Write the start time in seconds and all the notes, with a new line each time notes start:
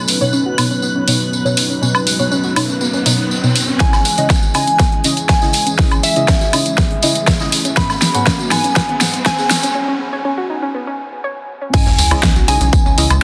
Already playing: F#3 B3 C#4 D#4 B4 F#6, riser
0.08 open hi-hat, tambourine
0.21 B2 B3 D#4 C#5, tambourine
0.33 C#4, tambourine
0.46 F#4
0.58 B2 B3 D#4 C#5, open hi-hat, tambourine, high woodblock
0.71 C#4, tambourine
0.82 B3, tambourine
0.95 C#4
1.08 B2 B3 D#4 C#5, open hi-hat, tambourine
1.20 tambourine
1.33 tambourine
1.45 B2 B3 D#4 C#5, tambourine
1.57 open hi-hat, tambourine
1.70 C#4, tambourine
1.82 B2 B3 C#4 D#4 C#5, tambourine
1.95 C#4, tambourine, high woodblock
2.07 open hi-hat, tambourine
2.19 B2 B3 D#4 C#5, tambourine
2.31 C#4, tambourine
2.43 F#4, tambourine
2.56 B2 B3 D#4 C#5, open hi-hat, tambourine, high woodblock
2.69 C#4, tambourine
2.81 B3, tambourine
2.93 C#4, tambourine
3.06 B2 B3 D#4 C#5, open hi-hat, tambourine
3.19 tambourine
3.31 tambourine
3.43 B2 B3 D#4 C#5, tambourine
3.56 open hi-hat, tambourine
3.68 C#4, tambourine
3.80 C#3 E3 G#3 C#4 E4 G#4 D#5 G#5, kick, snare, closed hi-hat, tambourine, riser
3.93 C#4, snare, closed hi-hat, tambourine, high woodblock
4.05 closed hi-hat, open hi-hat, tambourine
4.18 C#3 C#4 E4 C#5 D#5, closed hi-hat, tambourine
4.30 C#4, kick, snare, closed hi-hat, tambourine
4.42 F#4, closed hi-hat, tambourine
4.54 C#3 C#4 D#4 E4 D#5 G#5, closed hi-hat, open hi-hat, tambourine, high woodblock
4.67 C#4, closed hi-hat, tambourine
4.79 B3, kick, snare, closed hi-hat, tambourine
4.92 C#4, closed hi-hat
5.04 C#3 C#4 E4 D#5, closed hi-hat, open hi-hat, tambourine
5.17 closed hi-hat, tambourine
5.29 G#5, kick, snare, closed hi-hat, tambourine
5.42 C#3 C#4 E4 D#5, snare, closed hi-hat, tambourine
5.53 closed hi-hat, open hi-hat, tambourine
5.66 C#4, closed hi-hat, tambourine
5.79 C#3 C#4 E4 D#5, kick, snare, closed hi-hat, open hi-hat, tambourine
5.91 C#4, closed hi-hat, tambourine, high woodblock
6.03 E5, closed hi-hat, open hi-hat, tambourine
6.16 C#3 C#4 E4 C#5 D#5, closed hi-hat, tambourine
6.28 C#4, kick, snare, closed hi-hat, tambourine
6.41 F#4, snare, closed hi-hat, tambourine
6.53 C#3 C#4 D#4 E4 D#5, closed hi-hat, open hi-hat, tambourine, high woodblock
6.65 C#4, closed hi-hat, tambourine
6.78 B3, kick, snare, closed hi-hat, tambourine
6.91 C#4, closed hi-hat
7.02 C#3 C#4 E4 D#5, closed hi-hat, open hi-hat, tambourine
7.15 closed hi-hat, tambourine
7.27 kick, snare, closed hi-hat, tambourine
7.40 C#3 C#4 E4 D#5, snare, closed hi-hat, tambourine
7.52 closed hi-hat, open hi-hat, tambourine
7.65 C#4, closed hi-hat, tambourine
7.76 G#2 F#3 B3 G#4 F#5 B5, kick, snare, closed hi-hat, tambourine
7.90 C#4, snare, closed hi-hat, tambourine, high woodblock
8.01 snare, closed hi-hat, open hi-hat, tambourine
8.14 G#2 B3 G#4 C#5 F#5, closed hi-hat, tambourine
8.26 C#4, kick, snare, closed hi-hat, tambourine
8.39 F#4, closed hi-hat, tambourine
8.51 G#2 B3 D#4 G#4 F#5 G#5, snare, closed hi-hat, open hi-hat, tambourine, high woodblock
8.64 C#4, closed hi-hat, tambourine
8.76 B3, kick, snare, closed hi-hat, tambourine
8.89 C#4, closed hi-hat
9.00 G#2 B3 G#4 F#5, snare, closed hi-hat, open hi-hat, tambourine
9.13 closed hi-hat, tambourine
9.26 G#5, kick, snare, closed hi-hat, tambourine
9.38 G#2 B3 G#4 F#5, snare, closed hi-hat, tambourine
9.51 snare, closed hi-hat, open hi-hat, tambourine
9.63 C#4, closed hi-hat, tambourine
9.75 C#4
9.88 C#4
10.13 C#5
10.25 C#4
10.38 F#4
10.50 D#4
10.62 C#4
10.74 B3
10.87 C#4
11.24 C#5
11.61 C#4
11.73 C#3 E3 G#3 C#4 E4 D#5 G#5, kick, closed hi-hat, crash, tambourine, sub drop
11.86 C#2 C#4, snare, tambourine
11.98 C#2, closed hi-hat, open hi-hat, tambourine
12.11 C#2 C#3 C#4 E4 C#5 D#5, closed hi-hat, tambourine, high woodblock
12.23 C#4, kick, snare, closed hi-hat, tambourine
12.36 B1 F#4, closed hi-hat, tambourine
12.48 B1 C#3 C#4 D#4 E4 D#5 G#5, closed hi-hat, open hi-hat, tambourine
12.61 B1 C#4, closed hi-hat, tambourine
12.73 B3, kick, closed hi-hat, tambourine
12.85 C#2 C#4, tambourine
12.98 C#2 C#3 C#4 E4 D#5, closed hi-hat, open hi-hat, tambourine
13.10 C#2, closed hi-hat, tambourine, high woodblock